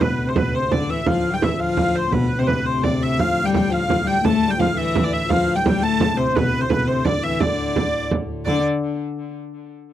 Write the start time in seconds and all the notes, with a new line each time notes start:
0.01 D2 A2 B2 B4, frame drum
0.18 frame drum
0.27 C3 C5
0.36 B2 B4, frame drum
0.54 C3 C5
0.70 D3 D5, frame drum
0.89 E3 E5
1.06 F3 F5, frame drum
1.25 frame drum
1.32 G3 G5
1.42 E3 E5, frame drum
1.58 F3 F5
1.77 frame drum
1.95 C5
2.11 B2 B4, frame drum
2.30 frame drum
2.38 C3 C5
2.47 B4, frame drum
2.65 C3 C5
2.83 D5, frame drum
3.02 E5
3.19 F3 F5, frame drum
3.44 G3 G5
3.54 G5, frame drum
3.70 F3 F5
3.87 F3, frame drum
4.05 G3 G5, frame drum
4.22 D2 A2 A3 A5, frame drum
4.43 frame drum
4.48 G3 G5
4.58 F3 F5, frame drum
4.75 E3 E5
4.95 frame drum
5.04 D5
5.13 E5
5.29 F3 F5, frame drum
5.49 frame drum
5.56 G3 G5
5.64 G3 G5, frame drum
5.82 A3 A5
6.00 frame drum
6.16 C3 C5
6.34 B2 B4, frame drum
6.54 frame drum
6.60 C3 C5
6.69 B2 B4, frame drum
6.87 C3 C5
7.04 D3 D5, frame drum
7.23 E3 E5
7.40 D3 D5, frame drum
7.76 frame drum
7.94 frame drum
8.11 frame drum
8.29 frame drum
8.45 D3 D5, frame drum